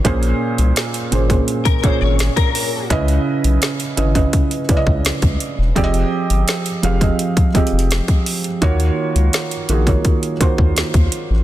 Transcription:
0.04 analog synth bass A#1, felt piano A#2 A#3 C#4 G#4 C5, kick, closed hi-hat
0.23 closed hi-hat
0.58 analog synth bass C2, closed hi-hat
0.76 snare, closed hi-hat
0.94 closed hi-hat
1.11 analog synth bass G#1, felt piano A#2 A#3 C#4 G#4 C5, closed hi-hat
1.29 felt piano A#2 A#3 C#4 G#4 C5, kick, closed hi-hat
1.48 closed hi-hat
1.65 clean electric guitar A#4, kick, closed hi-hat
1.83 analog synth bass G#1, felt piano A#2 A#3 C#4 G#4 C#5, clean electric guitar C5, kick, closed hi-hat
2.01 analog synth bass G#1, clean electric guitar C#5
2.19 snare, closed hi-hat
2.36 clean electric guitar A#4, kick, closed hi-hat
2.55 open hi-hat
2.90 analog synth bass C#2, felt piano C#3 C#4 E4 B4 D#5, kick, closed hi-hat
3.08 closed hi-hat
3.44 analog synth bass B1, closed hi-hat
3.62 snare, closed hi-hat
3.80 closed hi-hat
3.97 analog synth bass G#1, felt piano C#3 C#4 E4 B4 D#5, closed hi-hat
4.14 felt piano C#3 C#4 E4 B4 D#5, kick, closed hi-hat
4.33 kick, closed hi-hat
4.51 closed hi-hat
4.69 analog synth bass C#2, felt piano C#3 C#4 E4 B4 D5, kick, closed hi-hat
4.77 felt piano D#5
4.87 analog synth bass C#2, kick
5.05 analog synth bass C#2, snare, closed hi-hat
5.22 analog synth bass C#2, kick, closed hi-hat
5.40 closed hi-hat
5.58 analog synth bass E1
5.76 analog synth bass F1, felt piano F3 C4 G4 G#4 D5, kick, closed hi-hat
5.84 felt piano D#5
5.94 closed hi-hat
6.30 analog synth bass G1, closed hi-hat
6.48 snare, closed hi-hat
6.66 closed hi-hat
6.83 analog synth bass F1, felt piano F3 C4 G4 G#4 F5, closed hi-hat
7.01 felt piano F3 C4 G4 G#4 D#5, kick, closed hi-hat
7.19 closed hi-hat
7.37 kick, closed hi-hat
7.54 analog synth bass F1, felt piano F3 C4 G4 G#4 D#5, kick, closed hi-hat
7.67 closed hi-hat
7.72 analog synth bass F1
7.79 closed hi-hat
7.91 snare, closed hi-hat
8.08 kick, closed hi-hat
8.26 closed hi-hat, open hi-hat
8.44 closed hi-hat
8.61 analog synth bass D#2, felt piano D#3 A#3 F4 F#4 C#5, kick, closed hi-hat
8.80 closed hi-hat
9.16 analog synth bass C#2, closed hi-hat
9.33 snare, closed hi-hat
9.51 closed hi-hat
9.69 analog synth bass A#1, felt piano D#3 A#3 F4 F#4 G#4, closed hi-hat
9.87 felt piano D#3 A#3 F4 F#4 C#5, kick, closed hi-hat
10.05 kick, closed hi-hat
10.23 closed hi-hat
10.40 analog synth bass D#2, felt piano D#3 A#3 F4 F#4 C5, kick, closed hi-hat
10.58 analog synth bass D#2, kick
10.76 analog synth bass D#2, snare, closed hi-hat
10.94 analog synth bass D#2, kick, closed hi-hat
11.12 closed hi-hat
11.30 analog synth bass A1

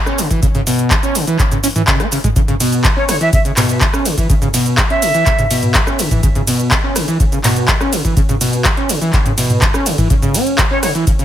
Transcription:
0.06 acid bass C#4, cross-stick, shaker
0.18 acid bass C#3, open hi-hat, shaker
0.31 acid bass E3, kick, closed hi-hat, shaker
0.43 acid bass C#3, kick, closed hi-hat, shaker
0.55 acid bass C#3, closed hi-hat, mid tom, shaker
0.67 acid bass B2, open hi-hat, shaker
0.79 closed hi-hat, shaker
0.91 acid bass C#3, kick, clap, closed hi-hat, shaker
1.03 acid bass C#4, closed hi-hat, shaker
1.15 acid bass C#3, open hi-hat, shaker
1.27 acid bass E3, closed hi-hat, shaker
1.39 acid bass C#3, kick, clap, closed hi-hat, shaker
1.52 acid bass C#3, closed hi-hat, mid tom, shaker
1.64 acid bass C#4, open hi-hat, shaker
1.76 acid bass E3, closed hi-hat, mid tom, shaker
1.87 acid bass C#3, kick, clap, closed hi-hat, shaker
2.00 acid bass B3, cross-stick, closed hi-hat, shaker
2.12 acid bass C#3, open hi-hat, shaker
2.24 acid bass G#3, kick, closed hi-hat, mid tom, shaker
2.36 acid bass C#3, kick, closed hi-hat, shaker
2.48 acid bass C#3, closed hi-hat, mid tom, shaker
2.60 acid bass B2, open hi-hat, ride, shaker
2.73 closed hi-hat, shaker
2.84 acid bass C#3, kick, clap, closed hi-hat, shaker
2.97 acid bass C#4, flute C#5
3.09 acid bass C#3, flute C#5, cross-stick, open hi-hat, ride, shaker
3.21 acid bass E3, flute E5, closed hi-hat, shaker
3.33 acid bass C#3, flute E5, kick, closed hi-hat, shaker
3.45 acid bass C#3, closed hi-hat, shaker
3.57 acid bass B2, clap, mid tom, open hi-hat, ride, shaker
3.69 closed hi-hat, shaker
3.81 acid bass C#3, kick, clap, closed hi-hat, shaker
3.93 acid bass C#4, cross-stick, shaker
4.05 acid bass C#3, open hi-hat, ride, shaker
4.18 acid bass E3, kick, closed hi-hat, shaker
4.30 acid bass C#3, kick, closed hi-hat, shaker
4.42 acid bass C#3, closed hi-hat, mid tom, shaker
4.54 acid bass B2, open hi-hat, ride, shaker
4.66 closed hi-hat, shaker
4.78 acid bass C#3, kick, clap, closed hi-hat, shaker
4.90 acid bass C#4, flute E5, closed hi-hat
5.02 acid bass C#3, open hi-hat, ride, shaker
5.14 acid bass E3, closed hi-hat, shaker
5.26 kick, clap, closed hi-hat, shaker
5.39 acid bass C#3, closed hi-hat, mid tom, shaker
5.51 acid bass B2, open hi-hat, ride, shaker
5.63 closed hi-hat, mid tom, shaker
5.74 acid bass C#3, kick, clap, closed hi-hat, shaker
5.87 acid bass C#4, cross-stick, shaker
5.99 acid bass C#3, open hi-hat, ride, shaker
6.11 acid bass E3, kick, closed hi-hat, mid tom, shaker
6.23 acid bass C#3, kick, closed hi-hat, shaker
6.35 acid bass C#3, closed hi-hat, mid tom, shaker
6.47 acid bass B2, open hi-hat, ride, shaker
6.60 closed hi-hat, shaker
6.71 acid bass C#3, kick, clap, closed hi-hat, shaker
6.84 acid bass C#4
6.96 acid bass C#3, cross-stick, open hi-hat, ride, shaker
7.08 acid bass E3, closed hi-hat, shaker
7.20 acid bass C#3, kick, closed hi-hat, shaker
7.32 acid bass C#3, closed hi-hat, shaker
7.44 acid bass B2, clap, mid tom, open hi-hat, ride, shaker
7.56 closed hi-hat, shaker
7.68 acid bass C#3, kick, clap, closed hi-hat, shaker
7.81 acid bass C#4, cross-stick, shaker
7.92 acid bass C#3, open hi-hat, ride, shaker
8.05 acid bass E3, kick, closed hi-hat, shaker
8.17 acid bass C#3, kick, closed hi-hat, shaker
8.29 acid bass C#3, closed hi-hat, mid tom, shaker
8.41 acid bass B2, open hi-hat, ride, shaker
8.53 closed hi-hat, shaker
8.65 acid bass C#3, kick, clap, closed hi-hat, shaker
8.77 acid bass C#4, closed hi-hat
8.89 acid bass C#3, open hi-hat, ride, shaker
9.02 acid bass E3, closed hi-hat, shaker
9.13 acid bass C#3, kick, clap, closed hi-hat, shaker
9.26 acid bass C#3, closed hi-hat, mid tom, shaker
9.38 acid bass B2, open hi-hat, ride, shaker
9.50 closed hi-hat, mid tom, shaker
9.61 acid bass C#3, kick, clap, closed hi-hat, shaker
9.74 acid bass C#4, cross-stick, shaker
9.86 acid bass C#3, open hi-hat, ride, shaker
9.98 acid bass E3, kick, closed hi-hat, mid tom, shaker
10.10 acid bass C#3, kick, closed hi-hat, shaker
10.22 acid bass C#3, closed hi-hat, mid tom, shaker
10.34 acid bass C#4, open hi-hat, ride, shaker
10.47 closed hi-hat, shaker
10.58 acid bass C#3, kick, clap, closed hi-hat, shaker
10.71 acid bass C#4, flute C#5
10.83 acid bass C#3, flute C#5, cross-stick, open hi-hat, ride, shaker
10.95 acid bass E3, closed hi-hat, shaker
11.07 acid bass C#3, kick, closed hi-hat, shaker
11.19 acid bass C#3, closed hi-hat, shaker

